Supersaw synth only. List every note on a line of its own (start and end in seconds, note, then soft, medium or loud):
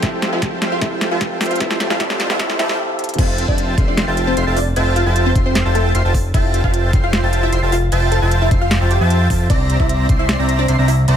0.02 0.30 F4 medium
0.02 0.30 C5 medium
0.02 0.30 E5 medium
0.02 0.30 G5 medium
0.02 0.30 A5 medium
0.32 0.59 F4 medium
0.32 0.59 C5 medium
0.32 0.59 E5 medium
0.32 0.59 G5 medium
0.32 0.59 A5 medium
0.62 0.80 F4 medium
0.62 0.80 C5 medium
0.62 0.80 E5 medium
0.62 0.80 G5 medium
0.62 0.80 C6 medium
0.82 1.09 A5 loud
1.11 1.38 F4 medium
1.11 1.38 C5 medium
1.11 1.38 E5 medium
1.11 1.38 G5 medium
1.11 1.38 A5 loud
1.41 1.59 F4 medium
1.41 1.59 C5 medium
1.41 1.59 E5 medium
1.41 1.59 G5 medium
1.41 1.59 C6 medium
1.60 1.88 F4 medium
1.60 1.88 C5 medium
1.60 1.88 E5 medium
1.60 1.88 G5 medium
1.90 1.98 F4 medium
1.90 1.98 C5 medium
1.90 1.98 E5 medium
1.90 1.98 G5 medium
1.90 1.98 A5 loud
2.00 2.27 F4 loud
2.00 2.27 C5 medium
2.30 2.38 F4 medium
2.30 2.38 C5 medium
2.30 2.38 E5 medium
2.30 2.38 G5 medium
2.30 2.38 A5 loud
2.40 2.58 F4 loud
2.40 2.58 C5 medium
2.40 2.58 E5 medium
2.40 2.58 G5 medium
2.40 2.58 A5 loud
2.59 2.77 F4 loud
2.59 2.77 C5 loud
2.59 2.77 E5 loud
2.59 2.77 G5 loud
2.59 2.77 A5 loud
3.19 3.46 F4 medium
3.19 3.46 C5 medium
3.19 3.46 E5 medium
3.19 3.46 G5 medium
3.19 3.46 A5 loud
3.48 3.75 F4 loud
3.48 3.75 C5 medium
3.48 3.75 E5 medium
3.48 3.75 G5 medium
3.48 3.75 A5 loud
3.78 4.05 F4 medium
3.78 4.05 C5 medium
3.78 4.05 E5 medium
3.78 4.05 G5 medium
3.78 4.05 C6 loud
4.08 4.35 F4 medium
4.08 4.35 C5 medium
4.08 4.35 E5 medium
4.08 4.35 G5 medium
4.08 4.35 A5 medium
4.37 4.45 F4 medium
4.37 4.45 C5 medium
4.37 4.45 E5 medium
4.37 4.45 G5 medium
4.37 4.45 C6 loud
4.47 4.59 F4 medium
4.47 4.59 C5 medium
4.47 4.59 E5 medium
4.47 4.59 G5 medium
4.47 4.59 A5 medium
4.76 5.04 F4 loud
4.76 5.04 C5 medium
4.76 5.04 E5 medium
4.76 5.04 G5 medium
4.76 5.04 A5 loud
5.06 5.33 F4 medium
5.06 5.33 C5 medium
5.06 5.33 E5 medium
5.06 5.33 G5 medium
5.06 5.33 A5 loud
5.35 5.63 F4 medium
5.35 5.63 C5 medium
5.35 5.63 E5 medium
5.35 5.63 G5 medium
5.35 5.63 C6 medium
5.65 5.93 F4 medium
5.65 5.93 C5 medium
5.65 5.93 E5 medium
5.65 5.93 G5 medium
5.65 5.93 A5 loud
5.95 6.02 F4 medium
5.95 6.02 C5 medium
5.95 6.02 E5 medium
5.95 6.02 G5 medium
5.95 6.02 C6 loud
6.05 6.17 F4 medium
6.05 6.17 C5 medium
6.05 6.17 E5 medium
6.05 6.17 G5 medium
6.05 6.17 A5 loud
6.34 6.62 F4 loud
6.34 6.62 C5 medium
6.34 6.62 E5 medium
6.34 6.62 G5 medium
6.34 6.62 A5 loud
6.64 6.91 F4 medium
6.64 6.91 C5 medium
6.64 6.91 E5 medium
6.64 6.91 G5 medium
6.64 6.91 A5 loud
7.23 7.51 F4 medium
7.23 7.51 C5 medium
7.23 7.51 E5 medium
7.23 7.51 G5 medium
7.23 7.51 A5 loud
7.53 7.60 F4 medium
7.53 7.60 C5 medium
7.53 7.60 E5 medium
7.53 7.60 G5 medium
7.53 7.60 C6 loud
7.63 7.75 F4 medium
7.63 7.75 C5 medium
7.63 7.75 E5 medium
7.63 7.75 G5 medium
7.63 7.75 A5 loud
7.92 8.19 F4 loud
7.92 8.19 C5 medium
7.92 8.19 E5 medium
7.92 8.20 G5 medium
7.92 8.19 A5 loud
8.22 8.49 F4 loud
8.22 8.49 C5 medium
8.22 8.49 E5 medium
8.22 8.49 G5 medium
8.22 8.49 A5 loud
8.51 8.79 F4 medium
8.51 8.79 C5 medium
8.51 8.79 E5 medium
8.51 8.79 C6 medium
8.81 8.99 F4 medium
8.81 8.99 C5 medium
8.81 8.99 E5 medium
8.81 8.99 G5 medium
8.81 8.99 A5 medium
9.01 9.28 F4 loud
9.01 9.28 C5 medium
9.01 9.28 E5 medium
9.01 9.28 G5 medium
9.01 9.28 A5 loud
9.30 9.48 C5 medium
9.30 9.48 E5 medium
9.30 9.48 A5 medium
9.50 9.77 C4 medium
9.50 9.77 C5 medium
9.50 9.77 D5 medium
9.50 9.77 E5 medium
9.50 9.77 A#5 loud
9.80 10.07 C4 medium
9.80 10.07 C5 medium
9.80 10.07 D5 medium
9.80 10.07 E5 medium
9.80 10.07 A#5 loud
10.09 10.37 C4 medium
10.09 10.37 C5 medium
10.09 10.37 D5 medium
10.09 10.37 E5 medium
10.09 10.37 C6 loud
10.39 10.67 C4 medium
10.39 10.67 C5 medium
10.39 10.67 D5 medium
10.39 10.67 E5 medium
10.39 10.67 A#5 medium
10.68 10.76 C4 medium
10.68 10.76 C5 medium
10.68 10.76 D5 medium
10.68 10.76 E5 medium
10.68 10.76 C6 loud
10.78 10.90 C4 medium
10.78 10.90 C5 medium
10.78 10.90 D5 medium
10.78 10.90 E5 medium
10.78 10.90 A#5 loud
11.08 11.17 C4 medium
11.08 11.17 C5 medium
11.08 11.17 D5 medium
11.08 11.17 E5 medium
11.08 11.17 A#5 loud